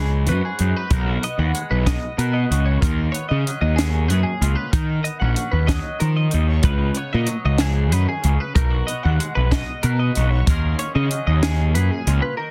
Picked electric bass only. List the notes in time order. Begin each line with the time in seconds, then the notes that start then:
Already playing: C#2
0.27 F#2
0.60 F#2
0.91 B1
1.39 D#2
1.71 B1
2.18 B2
2.51 C#2
2.83 D#2
3.31 C#3
3.62 D#2
4.10 F#2
4.41 C#2
4.73 D#3
5.22 A#1
5.53 D#2
6.01 D#3
6.34 D#2
6.64 C#2
7.14 A#2
7.45 C#2
7.93 F#2
8.24 C#2
8.56 B1
9.05 D#2
9.37 B1
9.84 B2
10.17 B1
10.47 D#2
10.95 C#3
11.27 D#2
11.77 F#2
12.07 C#2